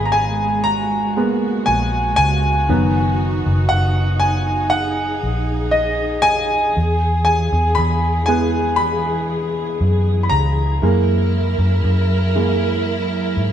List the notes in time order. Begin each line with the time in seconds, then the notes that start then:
Already playing: G#1 G#3 A#3 B3 G#4 G#5 B5
0.05 A#5
0.12 G#5
0.64 F#4 A#5
1.17 G#3 A#3 B3
1.66 A#1 G#5
2.16 C#2 G#5
2.69 F#1 D#3 F#3 B3 D#4
3.46 F#1
3.69 F#1 F#5
4.20 G#5
4.70 G#4 F#5
5.23 A#1
5.71 D#5
6.22 G#5
6.77 E2 E3
7.25 G#5
7.52 E2
7.75 E2 B5
8.26 E3 G#3 B3 G#5
8.76 B5
9.81 F#2
10.23 B5
10.30 C#2 A#5
10.82 F#2 E3 F#3 G#3 A#3 E4 A#4
11.58 F#2
11.84 F#2
12.35 E3 G#3 A#3
13.37 G#2